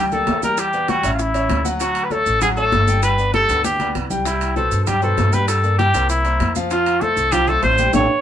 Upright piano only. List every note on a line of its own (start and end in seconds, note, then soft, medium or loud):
0.12 0.37 A#3 medium
0.12 0.37 G4 medium
0.12 0.38 D5 medium
0.42 0.68 G3 medium
0.42 0.68 G4 medium
0.42 0.68 G5 medium
0.74 0.86 B3 medium
0.74 0.86 B4 medium
0.74 0.86 D5 medium
0.88 1.01 G3 medium
0.88 1.01 G4 medium
0.88 1.02 G5 medium
1.04 1.29 C#4 medium
1.04 1.29 C#5 medium
1.04 1.29 E5 medium
1.34 1.59 C#4 medium
1.34 1.60 C#5 medium
1.34 1.60 E5 medium
1.65 1.77 F#3 medium
1.65 1.78 F#4 medium
1.65 1.78 F#5 medium
1.80 2.06 F#3 medium
1.80 2.06 F#4 medium
1.80 2.06 F#5 medium
2.11 2.36 A3 medium
2.11 2.36 A4 medium
2.11 2.36 C#5 medium
2.42 2.54 F#3 medium
2.42 2.54 F#4 medium
2.42 2.55 F#5 medium
2.57 2.82 A3 medium
2.57 2.82 A4 medium
2.57 2.83 C#5 medium
2.88 3.13 G3 medium
2.88 3.13 G4 medium
2.88 3.13 G5 medium
3.18 3.31 B3 medium
3.18 3.31 B4 medium
3.18 3.31 D5 medium
3.34 3.46 G3 medium
3.34 3.47 G4 medium
3.34 3.47 G5 medium
3.50 3.74 B3 medium
3.50 3.75 B4 medium
3.50 3.75 D5 medium
3.80 4.05 B3 medium
3.80 4.05 B4 medium
3.80 4.05 D5 medium
4.10 4.23 G3 medium
4.10 4.23 G4 medium
4.10 4.23 G5 medium
4.26 4.51 G3 medium
4.26 4.51 G4 medium
4.26 4.51 G5 medium
4.56 4.82 B2 medium
4.56 4.82 B4 medium
4.56 4.82 C5 medium
4.87 4.99 G3 medium
4.87 5.00 G4 medium
4.87 5.00 G5 medium
5.02 5.27 B2 medium
5.02 5.27 B4 medium
5.02 5.28 C5 medium
5.32 5.58 G3 medium
5.32 5.58 G4 medium
5.32 5.58 G5 medium
5.63 5.76 A#3 medium
5.63 5.76 A#4 medium
5.63 5.76 D5 medium
5.79 5.92 G3 medium
5.79 5.92 G4 medium
5.79 5.92 G5 medium
5.94 6.19 A#3 medium
5.94 6.20 A#4 medium
5.94 6.20 C5 medium
6.25 6.50 A#3 medium
6.25 6.50 A#4 medium
6.25 6.50 C5 medium
6.56 6.68 F3 loud
6.56 6.68 F4 loud
6.56 6.69 F5 medium
6.71 6.96 F3 medium
6.71 6.96 F4 loud
6.71 6.96 F5 medium
7.02 7.27 A3 medium
7.02 7.27 A4 medium
7.02 7.27 C5 medium
7.32 7.45 F3 medium
7.32 7.45 F4 medium
7.32 7.45 F5 medium
7.48 7.73 A3 medium
7.48 7.73 A4 medium
7.48 7.73 C5 medium
7.79 7.91 G3 loud
7.79 7.91 G4 medium
7.79 7.91 G5 medium
7.94 8.04 G4 loud
7.94 8.04 A4 loud
7.94 8.04 C#5 loud